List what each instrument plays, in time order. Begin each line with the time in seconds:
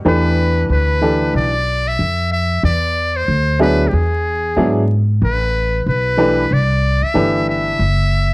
0.05 upright bass E2, upright piano E3 A3 D4 G4 B4, muted trumpet B4
0.70 upright bass D2, muted trumpet B4
1.01 upright piano E3 A3 D4 G4 A4
1.34 upright bass B1, muted trumpet D5
1.88 muted trumpet E5
1.99 upright bass F2
2.32 muted trumpet E5
2.63 upright bass E2, muted trumpet D5
3.16 muted trumpet C5
3.28 upright bass D2
3.59 upright piano F#3 B3 D4 E4 G#4, muted trumpet B4
3.88 muted trumpet G4
3.93 upright bass E2, muted trumpet G#4
4.56 upright bass G#2, upright piano F#3 B3 D4 E4 G#4
5.21 upright bass A1, muted trumpet B4
5.86 upright bass B1, muted trumpet B4
6.17 upright piano E3 A3 D4 G4 B4
6.51 upright bass C2, muted trumpet D5
7.02 muted trumpet E5, muted upright bass stroke
7.14 upright bass G1, upright piano E3 A3 D4 G4 B4
7.49 muted trumpet E5
7.79 upright bass F#1